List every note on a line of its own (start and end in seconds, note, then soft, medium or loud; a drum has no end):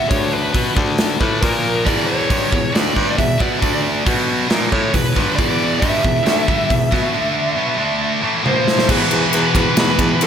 0.00 0.10 F#3 loud
0.00 0.11 B3 medium
0.09 0.51 D2 medium
0.09 0.52 D3 loud
0.09 0.53 A3 loud
0.09 0.54 D4 loud
0.09 0.32 C#5 loud
0.09 kick loud
0.09 open hi-hat medium
0.32 0.73 B4 medium
0.53 0.74 B2 medium
0.53 0.75 B2 medium
0.53 0.75 F#3 medium
0.53 0.76 B3 loud
0.53 kick loud
0.53 open hi-hat medium
0.75 1.17 D2 medium
0.75 1.19 D3 medium
0.75 1.19 A3 medium
0.75 1.19 D4 medium
0.75 kick loud
0.98 snare medium
0.98 open hi-hat soft
1.19 1.41 A2 medium
1.19 1.40 A2 medium
1.19 1.41 E3 medium
1.19 1.41 A3 medium
1.19 1.41 B4 medium
1.19 kick medium
1.41 1.85 A#2 medium
1.41 1.83 A#2 medium
1.41 1.85 F3 medium
1.41 1.86 A#3 medium
1.41 1.87 A#4 medium
1.41 kick loud
1.41 open hi-hat soft
1.85 2.28 E2 medium
1.85 2.27 E2 medium
1.85 2.29 B2 loud
1.85 2.29 E3 medium
1.85 2.07 D5 loud
1.85 kick medium
1.85 open hi-hat soft
2.07 2.74 C#5 medium
2.29 2.51 G2 medium
2.29 2.51 D3 loud
2.29 2.51 G3 loud
2.29 kick loud
2.29 open hi-hat medium
2.52 2.69 E2 medium
2.52 2.73 E2 medium
2.52 2.69 B2 medium
2.52 kick medium
2.72 2.94 D2 loud
2.72 2.94 D3 medium
2.72 2.95 A3 medium
2.72 2.95 D4 medium
2.72 3.15 D5 medium
2.72 snare loud
2.72 open hi-hat medium
2.94 3.16 G2 medium
2.94 3.16 G2 loud
2.94 3.17 D3 medium
2.94 3.17 G3 loud
2.94 kick medium
3.17 3.35 E2 medium
3.17 3.38 E2 medium
3.17 3.35 B2 medium
3.17 3.40 E5 loud
3.17 kick medium
3.17 open hi-hat medium
3.38 3.60 B2 loud
3.38 3.60 B2 medium
3.38 3.60 F#3 medium
3.38 3.62 B3 loud
3.38 3.81 D5 medium
3.38 kick loud
3.60 4.03 D2 medium
3.60 4.04 D3 loud
3.60 4.04 A3 medium
3.60 4.05 D4 medium
3.60 kick loud
3.60 open hi-hat soft
4.05 4.48 B2 medium
4.05 4.47 B2 medium
4.05 4.49 F#3 medium
4.05 4.49 B3 loud
4.05 kick loud
4.05 open hi-hat soft
4.49 4.70 A#2 medium
4.49 4.71 F3 medium
4.49 4.71 A#3 medium
4.49 snare loud
4.49 open hi-hat soft
4.72 4.93 A2 loud
4.72 4.92 A2 loud
4.72 4.93 E3 loud
4.72 4.93 A3 loud
4.72 4.92 C#5 medium
4.72 kick medium
4.93 5.11 E2 medium
4.93 5.14 E2 medium
4.93 5.11 B2 medium
4.93 5.34 B4 medium
4.93 kick medium
4.93 open hi-hat medium
5.15 5.36 G2 medium
5.15 5.37 D3 medium
5.15 5.37 G3 loud
5.15 kick medium
5.15 snare soft
5.35 5.80 E2 loud
5.35 5.79 E2 medium
5.35 5.81 B2 medium
5.35 5.81 E3 loud
5.35 5.79 D5 loud
5.35 kick loud
5.35 open hi-hat soft
5.79 6.02 G2 medium
5.79 6.03 D3 medium
5.79 6.03 G3 loud
5.79 8.40 E5 medium
5.79 kick loud
5.79 open hi-hat medium
6.04 6.21 E2 medium
6.04 6.24 E2 medium
6.04 6.21 B2 medium
6.04 kick loud
6.25 6.46 D2 medium
6.25 6.47 D3 medium
6.25 6.47 A3 loud
6.25 6.47 D4 medium
6.25 snare medium
6.25 open hi-hat soft
6.46 6.68 G2 medium
6.46 6.69 D3 loud
6.46 6.69 G3 loud
6.46 kick medium
6.69 6.90 E2 medium
6.69 6.87 E2 medium
6.69 6.87 B2 medium
6.69 kick medium
6.69 open hi-hat medium
6.91 7.12 B2 medium
6.91 7.12 F#3 medium
6.91 7.13 B3 loud
6.91 kick medium
6.91 snare soft
7.13 7.56 D3 loud
7.13 7.57 A3 medium
7.13 7.57 D4 loud
7.57 7.78 B2 medium
7.57 7.78 F#3 loud
7.57 7.79 B3 loud
7.79 8.22 D3 medium
7.79 8.22 A3 medium
7.79 8.23 D4 medium
8.22 8.42 A2 medium
8.22 8.43 E3 medium
8.22 8.44 A3 medium
8.43 8.87 A#2 medium
8.43 8.87 F3 loud
8.43 8.88 A#3 medium
8.43 high tom medium
8.48 8.87 C5 medium
8.68 snare medium
8.79 snare medium
8.87 10.27 E2 medium
8.87 9.03 E2 medium
8.87 10.27 B2 loud
8.87 10.27 E3 loud
8.87 9.30 B4 loud
8.87 kick loud
8.87 crash loud
9.11 9.25 E2 medium
9.11 ride medium
9.33 9.47 E2 medium
9.33 9.55 B4 medium
9.33 ride loud
9.54 9.68 E2 medium
9.54 9.78 B4 loud
9.54 kick medium
9.54 ride medium
9.77 9.91 E2 loud
9.77 10.23 B4 loud
9.77 snare loud
9.77 ride loud
9.99 10.13 E2 loud
9.99 kick medium
9.99 ride medium
10.21 10.27 E2 loud
10.21 10.27 A4 loud
10.21 ride loud